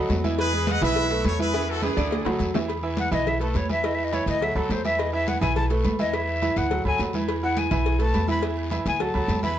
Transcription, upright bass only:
0, 0, Header, 1, 2, 480
1, 0, Start_track
1, 0, Key_signature, 4, "major"
1, 0, Tempo, 287081
1, 652, Time_signature, 4, 2, 24, 8
1, 16033, End_track
2, 0, Start_track
2, 0, Title_t, "Upright bass"
2, 0, Program_c, 0, 32
2, 159, Note_on_c, 0, 40, 94
2, 1276, Note_off_c, 0, 40, 0
2, 1361, Note_on_c, 0, 35, 97
2, 2037, Note_off_c, 0, 35, 0
2, 2082, Note_on_c, 0, 40, 89
2, 3198, Note_off_c, 0, 40, 0
2, 3292, Note_on_c, 0, 38, 98
2, 3740, Note_off_c, 0, 38, 0
2, 3773, Note_on_c, 0, 38, 78
2, 3997, Note_off_c, 0, 38, 0
2, 4009, Note_on_c, 0, 40, 83
2, 5122, Note_off_c, 0, 40, 0
2, 5206, Note_on_c, 0, 35, 86
2, 5881, Note_off_c, 0, 35, 0
2, 5931, Note_on_c, 0, 40, 85
2, 7043, Note_off_c, 0, 40, 0
2, 7127, Note_on_c, 0, 38, 94
2, 7579, Note_off_c, 0, 38, 0
2, 7612, Note_on_c, 0, 38, 76
2, 7838, Note_off_c, 0, 38, 0
2, 7850, Note_on_c, 0, 40, 85
2, 8963, Note_off_c, 0, 40, 0
2, 9050, Note_on_c, 0, 35, 100
2, 9723, Note_off_c, 0, 35, 0
2, 9778, Note_on_c, 0, 40, 93
2, 10886, Note_off_c, 0, 40, 0
2, 10977, Note_on_c, 0, 38, 91
2, 11423, Note_off_c, 0, 38, 0
2, 11453, Note_on_c, 0, 38, 75
2, 11677, Note_off_c, 0, 38, 0
2, 11694, Note_on_c, 0, 40, 89
2, 12803, Note_off_c, 0, 40, 0
2, 12895, Note_on_c, 0, 35, 98
2, 13564, Note_off_c, 0, 35, 0
2, 13611, Note_on_c, 0, 40, 84
2, 14721, Note_off_c, 0, 40, 0
2, 14807, Note_on_c, 0, 38, 98
2, 15257, Note_off_c, 0, 38, 0
2, 15293, Note_on_c, 0, 38, 83
2, 15509, Note_off_c, 0, 38, 0
2, 15520, Note_on_c, 0, 40, 89
2, 16033, Note_off_c, 0, 40, 0
2, 16033, End_track
0, 0, End_of_file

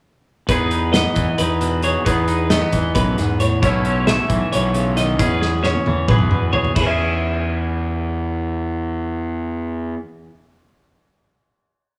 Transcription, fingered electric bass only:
0, 0, Header, 1, 2, 480
1, 0, Start_track
1, 0, Key_signature, 4, "major"
1, 0, Tempo, 450450
1, 521, Time_signature, 7, 3, 24, 8
1, 12769, End_track
2, 0, Start_track
2, 0, Title_t, "Fingered electric bass"
2, 0, Program_c, 0, 33
2, 522, Note_on_c, 0, 40, 82
2, 1112, Note_off_c, 0, 40, 0
2, 1243, Note_on_c, 0, 40, 84
2, 1341, Note_off_c, 0, 40, 0
2, 1490, Note_on_c, 0, 40, 76
2, 2076, Note_off_c, 0, 40, 0
2, 2206, Note_on_c, 0, 40, 92
2, 2793, Note_off_c, 0, 40, 0
2, 2912, Note_on_c, 0, 40, 72
2, 3111, Note_off_c, 0, 40, 0
2, 3146, Note_on_c, 0, 35, 75
2, 3347, Note_off_c, 0, 35, 0
2, 3403, Note_on_c, 0, 40, 74
2, 3792, Note_off_c, 0, 40, 0
2, 3864, Note_on_c, 0, 35, 82
2, 4456, Note_off_c, 0, 35, 0
2, 4577, Note_on_c, 0, 35, 85
2, 4681, Note_off_c, 0, 35, 0
2, 4844, Note_on_c, 0, 35, 77
2, 5540, Note_off_c, 0, 35, 0
2, 5540, Note_on_c, 0, 40, 89
2, 6130, Note_off_c, 0, 40, 0
2, 6259, Note_on_c, 0, 40, 71
2, 6457, Note_off_c, 0, 40, 0
2, 6488, Note_on_c, 0, 35, 81
2, 6690, Note_off_c, 0, 35, 0
2, 6744, Note_on_c, 0, 40, 65
2, 7135, Note_off_c, 0, 40, 0
2, 7204, Note_on_c, 0, 40, 77
2, 10592, Note_off_c, 0, 40, 0
2, 12769, End_track
0, 0, End_of_file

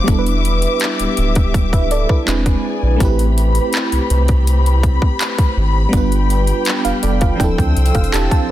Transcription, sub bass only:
0, 0, Header, 1, 2, 480
1, 0, Start_track
1, 0, Tempo, 731707
1, 51, Time_signature, 4, 2, 24, 8
1, 5585, End_track
2, 0, Start_track
2, 0, Title_t, "Sub bass"
2, 0, Program_c, 0, 38
2, 52, Note_on_c, 0, 28, 106
2, 438, Note_off_c, 0, 28, 0
2, 656, Note_on_c, 0, 26, 43
2, 703, Note_off_c, 0, 26, 0
2, 775, Note_on_c, 0, 26, 77
2, 1347, Note_off_c, 0, 26, 0
2, 1495, Note_on_c, 0, 28, 89
2, 1687, Note_off_c, 0, 28, 0
2, 1855, Note_on_c, 0, 34, 82
2, 1950, Note_off_c, 0, 34, 0
2, 1972, Note_on_c, 0, 33, 103
2, 2358, Note_off_c, 0, 33, 0
2, 2574, Note_on_c, 0, 36, 44
2, 2621, Note_off_c, 0, 36, 0
2, 2694, Note_on_c, 0, 36, 87
2, 3266, Note_off_c, 0, 36, 0
2, 3655, Note_on_c, 0, 32, 92
2, 3846, Note_off_c, 0, 32, 0
2, 3892, Note_on_c, 0, 31, 108
2, 4278, Note_off_c, 0, 31, 0
2, 4494, Note_on_c, 0, 29, 46
2, 4541, Note_off_c, 0, 29, 0
2, 4616, Note_on_c, 0, 29, 85
2, 4807, Note_off_c, 0, 29, 0
2, 4854, Note_on_c, 0, 26, 96
2, 4950, Note_off_c, 0, 26, 0
2, 4976, Note_on_c, 0, 38, 97
2, 5071, Note_off_c, 0, 38, 0
2, 5096, Note_on_c, 0, 36, 96
2, 5190, Note_off_c, 0, 36, 0
2, 5216, Note_on_c, 0, 29, 96
2, 5311, Note_off_c, 0, 29, 0
2, 5336, Note_on_c, 0, 28, 89
2, 5431, Note_off_c, 0, 28, 0
2, 5585, End_track
0, 0, End_of_file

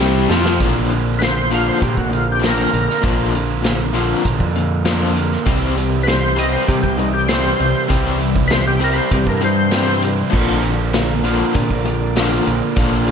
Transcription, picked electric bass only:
0, 0, Header, 1, 2, 480
1, 0, Start_track
1, 0, Tempo, 607903
1, 476, Time_signature, 4, 2, 24, 8
1, 10353, End_track
2, 0, Start_track
2, 0, Title_t, "Picked electric bass"
2, 0, Program_c, 0, 34
2, 0, Note_on_c, 0, 36, 92
2, 206, Note_off_c, 0, 36, 0
2, 236, Note_on_c, 0, 41, 93
2, 460, Note_off_c, 0, 41, 0
2, 481, Note_on_c, 0, 34, 81
2, 1339, Note_off_c, 0, 34, 0
2, 1439, Note_on_c, 0, 46, 99
2, 1546, Note_off_c, 0, 46, 0
2, 1564, Note_on_c, 0, 34, 76
2, 2099, Note_off_c, 0, 34, 0
2, 2160, Note_on_c, 0, 34, 83
2, 2267, Note_off_c, 0, 34, 0
2, 2404, Note_on_c, 0, 34, 91
2, 3261, Note_off_c, 0, 34, 0
2, 3359, Note_on_c, 0, 34, 91
2, 3467, Note_off_c, 0, 34, 0
2, 3476, Note_on_c, 0, 41, 77
2, 4229, Note_off_c, 0, 41, 0
2, 4317, Note_on_c, 0, 36, 88
2, 5177, Note_off_c, 0, 36, 0
2, 5280, Note_on_c, 0, 48, 102
2, 5387, Note_off_c, 0, 48, 0
2, 5401, Note_on_c, 0, 36, 79
2, 5937, Note_off_c, 0, 36, 0
2, 6002, Note_on_c, 0, 36, 88
2, 6108, Note_off_c, 0, 36, 0
2, 6243, Note_on_c, 0, 36, 98
2, 7100, Note_off_c, 0, 36, 0
2, 7201, Note_on_c, 0, 36, 93
2, 7307, Note_off_c, 0, 36, 0
2, 7316, Note_on_c, 0, 43, 77
2, 8069, Note_off_c, 0, 43, 0
2, 8160, Note_on_c, 0, 34, 94
2, 9019, Note_off_c, 0, 34, 0
2, 9123, Note_on_c, 0, 46, 103
2, 9228, Note_off_c, 0, 46, 0
2, 9245, Note_on_c, 0, 34, 79
2, 9779, Note_off_c, 0, 34, 0
2, 9847, Note_on_c, 0, 34, 87
2, 9951, Note_off_c, 0, 34, 0
2, 10081, Note_on_c, 0, 34, 96
2, 10353, Note_off_c, 0, 34, 0
2, 10353, End_track
0, 0, End_of_file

